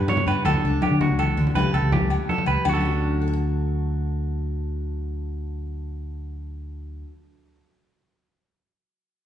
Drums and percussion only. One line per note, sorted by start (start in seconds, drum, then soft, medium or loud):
0.08 high conga medium
0.17 low conga medium
0.28 low agogo medium
0.45 high conga medium
0.45 low agogo medium
0.54 low conga medium
0.82 high conga medium
0.82 low agogo medium
1.01 low conga medium
1.10 low conga soft
1.19 low agogo medium
1.47 low conga medium
1.55 high conga medium
1.55 low agogo medium
1.74 low agogo soft
1.92 high conga medium
1.92 low conga medium
2.01 low conga soft
2.10 low agogo medium
2.29 high conga medium
2.38 low conga medium
2.46 low agogo medium
2.65 high conga medium
2.65 low agogo medium